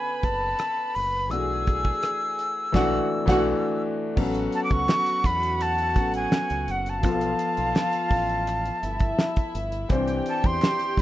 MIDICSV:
0, 0, Header, 1, 6, 480
1, 0, Start_track
1, 0, Key_signature, 3, "major"
1, 0, Tempo, 715990
1, 882, Time_signature, 4, 2, 24, 8
1, 7387, End_track
2, 0, Start_track
2, 0, Title_t, "Flute"
2, 0, Program_c, 0, 73
2, 0, Note_on_c, 0, 80, 89
2, 164, Note_on_c, 0, 81, 94
2, 174, Note_off_c, 0, 80, 0
2, 637, Note_on_c, 0, 83, 94
2, 647, Note_off_c, 0, 81, 0
2, 877, Note_on_c, 0, 88, 87
2, 887, Note_off_c, 0, 83, 0
2, 2559, Note_off_c, 0, 88, 0
2, 3049, Note_on_c, 0, 81, 89
2, 3107, Note_off_c, 0, 81, 0
2, 3111, Note_on_c, 0, 86, 78
2, 3163, Note_on_c, 0, 85, 102
2, 3173, Note_off_c, 0, 86, 0
2, 3527, Note_on_c, 0, 83, 93
2, 3537, Note_off_c, 0, 85, 0
2, 3768, Note_on_c, 0, 81, 97
2, 3778, Note_off_c, 0, 83, 0
2, 4124, Note_off_c, 0, 81, 0
2, 4130, Note_on_c, 0, 80, 96
2, 4499, Note_on_c, 0, 78, 85
2, 4509, Note_off_c, 0, 80, 0
2, 4623, Note_on_c, 0, 81, 91
2, 4633, Note_off_c, 0, 78, 0
2, 6410, Note_off_c, 0, 81, 0
2, 6900, Note_on_c, 0, 81, 97
2, 7015, Note_on_c, 0, 84, 110
2, 7025, Note_off_c, 0, 81, 0
2, 7383, Note_off_c, 0, 84, 0
2, 7387, End_track
3, 0, Start_track
3, 0, Title_t, "Violin section"
3, 0, Program_c, 1, 48
3, 0, Note_on_c, 1, 71, 73
3, 0, Note_on_c, 1, 83, 80
3, 851, Note_off_c, 1, 71, 0
3, 851, Note_off_c, 1, 83, 0
3, 879, Note_on_c, 1, 68, 79
3, 881, Note_on_c, 1, 80, 85
3, 1822, Note_off_c, 1, 68, 0
3, 1823, Note_off_c, 1, 80, 0
3, 1839, Note_on_c, 1, 66, 95
3, 1839, Note_on_c, 1, 78, 94
3, 2004, Note_off_c, 1, 66, 0
3, 2004, Note_off_c, 1, 78, 0
3, 2194, Note_on_c, 1, 66, 91
3, 2195, Note_on_c, 1, 78, 92
3, 2361, Note_off_c, 1, 66, 0
3, 2361, Note_off_c, 1, 78, 0
3, 2799, Note_on_c, 1, 66, 75
3, 2799, Note_on_c, 1, 78, 84
3, 4692, Note_off_c, 1, 66, 0
3, 4692, Note_off_c, 1, 78, 0
3, 4718, Note_on_c, 1, 65, 83
3, 4719, Note_on_c, 1, 77, 91
3, 5894, Note_off_c, 1, 65, 0
3, 5895, Note_off_c, 1, 77, 0
3, 5920, Note_on_c, 1, 76, 87
3, 5921, Note_on_c, 1, 64, 80
3, 6625, Note_off_c, 1, 64, 0
3, 6625, Note_off_c, 1, 76, 0
3, 6642, Note_on_c, 1, 67, 80
3, 6642, Note_on_c, 1, 79, 87
3, 7387, Note_off_c, 1, 67, 0
3, 7387, Note_off_c, 1, 79, 0
3, 7387, End_track
4, 0, Start_track
4, 0, Title_t, "Grand piano"
4, 0, Program_c, 2, 0
4, 0, Control_c, 2, 64, 127
4, 0, Note_on_c, 2, 50, 59
4, 0, Note_on_c, 2, 59, 50
4, 0, Note_on_c, 2, 61, 50
4, 0, Note_on_c, 2, 69, 66
4, 851, Note_off_c, 2, 50, 0
4, 856, Note_off_c, 2, 59, 0
4, 859, Note_off_c, 2, 61, 0
4, 870, Note_on_c, 2, 52, 60
4, 875, Note_on_c, 2, 57, 53
4, 884, Note_off_c, 2, 69, 0
4, 884, Note_on_c, 2, 62, 57
4, 891, Control_c, 2, 64, 0
4, 892, Note_on_c, 2, 66, 70
4, 991, Control_c, 2, 64, 127
4, 1815, Note_off_c, 2, 52, 0
4, 1819, Note_off_c, 2, 57, 0
4, 1824, Note_off_c, 2, 62, 0
4, 1825, Note_on_c, 2, 52, 98
4, 1828, Note_off_c, 2, 66, 0
4, 1831, Note_on_c, 2, 57, 93
4, 1838, Note_on_c, 2, 62, 94
4, 1848, Note_on_c, 2, 66, 99
4, 1996, Note_off_c, 2, 52, 0
4, 1999, Note_off_c, 2, 57, 0
4, 2003, Note_off_c, 2, 62, 0
4, 2009, Note_off_c, 2, 66, 0
4, 2184, Note_on_c, 2, 52, 99
4, 2192, Note_on_c, 2, 57, 101
4, 2199, Note_on_c, 2, 62, 99
4, 2207, Note_on_c, 2, 66, 101
4, 2355, Note_off_c, 2, 52, 0
4, 2360, Note_off_c, 2, 57, 0
4, 2363, Note_off_c, 2, 62, 0
4, 2368, Note_off_c, 2, 66, 0
4, 2789, Note_on_c, 2, 54, 73
4, 2798, Note_on_c, 2, 59, 67
4, 2803, Note_on_c, 2, 61, 67
4, 2812, Control_c, 2, 64, 0
4, 2813, Note_on_c, 2, 69, 83
4, 2946, Control_c, 2, 64, 127
4, 3970, Note_off_c, 2, 54, 0
4, 3975, Note_off_c, 2, 59, 0
4, 3978, Note_off_c, 2, 61, 0
4, 3983, Note_off_c, 2, 69, 0
4, 3995, Note_on_c, 2, 54, 47
4, 3999, Note_on_c, 2, 59, 42
4, 4004, Note_on_c, 2, 61, 45
4, 4006, Note_on_c, 2, 69, 50
4, 4703, Note_off_c, 2, 59, 0
4, 4708, Note_on_c, 2, 53, 60
4, 4713, Note_on_c, 2, 59, 57
4, 4718, Note_off_c, 2, 54, 0
4, 4722, Note_off_c, 2, 61, 0
4, 4722, Note_off_c, 2, 69, 0
4, 4722, Note_on_c, 2, 65, 57
4, 4729, Control_c, 2, 64, 0
4, 4732, Note_on_c, 2, 69, 72
4, 4843, Control_c, 2, 64, 127
4, 6606, Note_off_c, 2, 53, 0
4, 6609, Note_off_c, 2, 59, 0
4, 6613, Note_off_c, 2, 65, 0
4, 6618, Note_off_c, 2, 69, 0
4, 6631, Note_on_c, 2, 52, 74
4, 6638, Note_on_c, 2, 60, 72
4, 6647, Note_on_c, 2, 62, 66
4, 6649, Control_c, 2, 64, 0
4, 6652, Note_on_c, 2, 72, 88
4, 6772, Control_c, 2, 64, 127
4, 7387, Note_off_c, 2, 52, 0
4, 7387, Note_off_c, 2, 60, 0
4, 7387, Note_off_c, 2, 62, 0
4, 7387, Note_off_c, 2, 72, 0
4, 7387, End_track
5, 0, Start_track
5, 0, Title_t, "Fingered electric bass"
5, 0, Program_c, 3, 33
5, 158, Note_on_c, 3, 30, 87
5, 356, Note_off_c, 3, 30, 0
5, 645, Note_on_c, 3, 30, 79
5, 883, Note_off_c, 3, 30, 0
5, 883, Note_on_c, 3, 35, 101
5, 1275, Note_off_c, 3, 35, 0
5, 1840, Note_on_c, 3, 35, 86
5, 2004, Note_off_c, 3, 35, 0
5, 2199, Note_on_c, 3, 35, 97
5, 2363, Note_off_c, 3, 35, 0
5, 2798, Note_on_c, 3, 33, 99
5, 2996, Note_off_c, 3, 33, 0
5, 3160, Note_on_c, 3, 37, 85
5, 3258, Note_off_c, 3, 37, 0
5, 3516, Note_on_c, 3, 40, 87
5, 3997, Note_off_c, 3, 40, 0
5, 3997, Note_on_c, 3, 33, 91
5, 4194, Note_off_c, 3, 33, 0
5, 4362, Note_on_c, 3, 37, 81
5, 4459, Note_off_c, 3, 37, 0
5, 4478, Note_on_c, 3, 30, 94
5, 4721, Note_off_c, 3, 30, 0
5, 4721, Note_on_c, 3, 35, 103
5, 4916, Note_off_c, 3, 35, 0
5, 5082, Note_on_c, 3, 35, 78
5, 5179, Note_off_c, 3, 35, 0
5, 5437, Note_on_c, 3, 33, 91
5, 5830, Note_off_c, 3, 33, 0
5, 5920, Note_on_c, 3, 31, 92
5, 6116, Note_off_c, 3, 31, 0
5, 6402, Note_on_c, 3, 31, 91
5, 6597, Note_off_c, 3, 31, 0
5, 6641, Note_on_c, 3, 36, 112
5, 6836, Note_off_c, 3, 36, 0
5, 7001, Note_on_c, 3, 40, 89
5, 7098, Note_off_c, 3, 40, 0
5, 7360, Note_on_c, 3, 43, 86
5, 7387, Note_off_c, 3, 43, 0
5, 7387, End_track
6, 0, Start_track
6, 0, Title_t, "Drums"
6, 154, Note_on_c, 9, 42, 55
6, 157, Note_on_c, 9, 36, 87
6, 158, Note_on_c, 9, 37, 33
6, 221, Note_off_c, 9, 42, 0
6, 224, Note_off_c, 9, 36, 0
6, 225, Note_off_c, 9, 37, 0
6, 394, Note_on_c, 9, 42, 80
6, 400, Note_on_c, 9, 37, 106
6, 461, Note_off_c, 9, 42, 0
6, 467, Note_off_c, 9, 37, 0
6, 642, Note_on_c, 9, 46, 59
6, 709, Note_off_c, 9, 46, 0
6, 880, Note_on_c, 9, 42, 82
6, 947, Note_off_c, 9, 42, 0
6, 1120, Note_on_c, 9, 42, 59
6, 1123, Note_on_c, 9, 36, 90
6, 1187, Note_off_c, 9, 42, 0
6, 1190, Note_off_c, 9, 36, 0
6, 1239, Note_on_c, 9, 36, 92
6, 1306, Note_off_c, 9, 36, 0
6, 1359, Note_on_c, 9, 42, 85
6, 1364, Note_on_c, 9, 37, 103
6, 1426, Note_off_c, 9, 42, 0
6, 1431, Note_off_c, 9, 37, 0
6, 1602, Note_on_c, 9, 42, 71
6, 1669, Note_off_c, 9, 42, 0
6, 1836, Note_on_c, 9, 49, 76
6, 1838, Note_on_c, 9, 36, 95
6, 1841, Note_on_c, 9, 38, 98
6, 1903, Note_off_c, 9, 49, 0
6, 1905, Note_off_c, 9, 36, 0
6, 1908, Note_off_c, 9, 38, 0
6, 2196, Note_on_c, 9, 49, 75
6, 2197, Note_on_c, 9, 36, 107
6, 2201, Note_on_c, 9, 38, 97
6, 2263, Note_off_c, 9, 49, 0
6, 2264, Note_off_c, 9, 36, 0
6, 2268, Note_off_c, 9, 38, 0
6, 2795, Note_on_c, 9, 49, 85
6, 2796, Note_on_c, 9, 36, 100
6, 2862, Note_off_c, 9, 49, 0
6, 2863, Note_off_c, 9, 36, 0
6, 2912, Note_on_c, 9, 42, 52
6, 2979, Note_off_c, 9, 42, 0
6, 3033, Note_on_c, 9, 42, 66
6, 3100, Note_off_c, 9, 42, 0
6, 3152, Note_on_c, 9, 42, 42
6, 3156, Note_on_c, 9, 36, 93
6, 3219, Note_off_c, 9, 42, 0
6, 3223, Note_off_c, 9, 36, 0
6, 3277, Note_on_c, 9, 39, 73
6, 3279, Note_on_c, 9, 38, 115
6, 3344, Note_off_c, 9, 39, 0
6, 3346, Note_off_c, 9, 38, 0
6, 3395, Note_on_c, 9, 42, 55
6, 3462, Note_off_c, 9, 42, 0
6, 3514, Note_on_c, 9, 36, 83
6, 3521, Note_on_c, 9, 42, 77
6, 3581, Note_off_c, 9, 36, 0
6, 3588, Note_off_c, 9, 42, 0
6, 3641, Note_on_c, 9, 42, 50
6, 3708, Note_off_c, 9, 42, 0
6, 3758, Note_on_c, 9, 42, 81
6, 3763, Note_on_c, 9, 39, 69
6, 3825, Note_off_c, 9, 42, 0
6, 3830, Note_off_c, 9, 39, 0
6, 3877, Note_on_c, 9, 42, 48
6, 3944, Note_off_c, 9, 42, 0
6, 3995, Note_on_c, 9, 36, 89
6, 3995, Note_on_c, 9, 42, 57
6, 4062, Note_off_c, 9, 36, 0
6, 4062, Note_off_c, 9, 42, 0
6, 4114, Note_on_c, 9, 42, 55
6, 4181, Note_off_c, 9, 42, 0
6, 4237, Note_on_c, 9, 38, 110
6, 4241, Note_on_c, 9, 39, 83
6, 4304, Note_off_c, 9, 38, 0
6, 4308, Note_off_c, 9, 39, 0
6, 4357, Note_on_c, 9, 42, 49
6, 4425, Note_off_c, 9, 42, 0
6, 4478, Note_on_c, 9, 42, 58
6, 4545, Note_off_c, 9, 42, 0
6, 4600, Note_on_c, 9, 42, 50
6, 4667, Note_off_c, 9, 42, 0
6, 4714, Note_on_c, 9, 42, 91
6, 4716, Note_on_c, 9, 36, 105
6, 4781, Note_off_c, 9, 42, 0
6, 4783, Note_off_c, 9, 36, 0
6, 4834, Note_on_c, 9, 42, 52
6, 4901, Note_off_c, 9, 42, 0
6, 4954, Note_on_c, 9, 42, 64
6, 5021, Note_off_c, 9, 42, 0
6, 5076, Note_on_c, 9, 42, 42
6, 5143, Note_off_c, 9, 42, 0
6, 5200, Note_on_c, 9, 39, 80
6, 5202, Note_on_c, 9, 38, 105
6, 5267, Note_off_c, 9, 39, 0
6, 5269, Note_off_c, 9, 38, 0
6, 5315, Note_on_c, 9, 42, 52
6, 5382, Note_off_c, 9, 42, 0
6, 5435, Note_on_c, 9, 36, 94
6, 5442, Note_on_c, 9, 46, 55
6, 5502, Note_off_c, 9, 36, 0
6, 5509, Note_off_c, 9, 46, 0
6, 5561, Note_on_c, 9, 42, 51
6, 5628, Note_off_c, 9, 42, 0
6, 5680, Note_on_c, 9, 42, 82
6, 5688, Note_on_c, 9, 39, 65
6, 5747, Note_off_c, 9, 42, 0
6, 5755, Note_off_c, 9, 39, 0
6, 5802, Note_on_c, 9, 42, 48
6, 5869, Note_off_c, 9, 42, 0
6, 5920, Note_on_c, 9, 42, 63
6, 5987, Note_off_c, 9, 42, 0
6, 6031, Note_on_c, 9, 42, 56
6, 6037, Note_on_c, 9, 36, 90
6, 6098, Note_off_c, 9, 42, 0
6, 6104, Note_off_c, 9, 36, 0
6, 6158, Note_on_c, 9, 38, 110
6, 6165, Note_on_c, 9, 39, 83
6, 6225, Note_off_c, 9, 38, 0
6, 6232, Note_off_c, 9, 39, 0
6, 6277, Note_on_c, 9, 42, 55
6, 6281, Note_on_c, 9, 36, 93
6, 6344, Note_off_c, 9, 42, 0
6, 6348, Note_off_c, 9, 36, 0
6, 6402, Note_on_c, 9, 42, 64
6, 6469, Note_off_c, 9, 42, 0
6, 6517, Note_on_c, 9, 42, 54
6, 6584, Note_off_c, 9, 42, 0
6, 6634, Note_on_c, 9, 42, 87
6, 6637, Note_on_c, 9, 36, 106
6, 6701, Note_off_c, 9, 42, 0
6, 6704, Note_off_c, 9, 36, 0
6, 6755, Note_on_c, 9, 42, 53
6, 6822, Note_off_c, 9, 42, 0
6, 6877, Note_on_c, 9, 42, 68
6, 6944, Note_off_c, 9, 42, 0
6, 6996, Note_on_c, 9, 42, 43
6, 6999, Note_on_c, 9, 36, 99
6, 7063, Note_off_c, 9, 42, 0
6, 7066, Note_off_c, 9, 36, 0
6, 7118, Note_on_c, 9, 39, 77
6, 7129, Note_on_c, 9, 38, 109
6, 7185, Note_off_c, 9, 39, 0
6, 7196, Note_off_c, 9, 38, 0
6, 7237, Note_on_c, 9, 42, 54
6, 7304, Note_off_c, 9, 42, 0
6, 7357, Note_on_c, 9, 36, 94
6, 7366, Note_on_c, 9, 42, 75
6, 7387, Note_off_c, 9, 36, 0
6, 7387, Note_off_c, 9, 42, 0
6, 7387, End_track
0, 0, End_of_file